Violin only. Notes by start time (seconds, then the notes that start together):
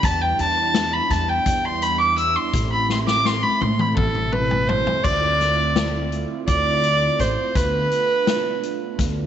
0.04 A5
0.22 G5
0.40 A5
0.93 B5
1.11 A5
1.29 G5
1.65 C6
1.83 B5
2.01 D6
2.18 E6
2.36 C6
2.73 B5
2.90 C6
3.08 D6
3.26 C6
3.43 B5
3.61 C6
3.80 B5
3.97 A4
4.32 B4
4.67 C5
5.03 D5
6.48 D5
7.20 C5
7.56 B4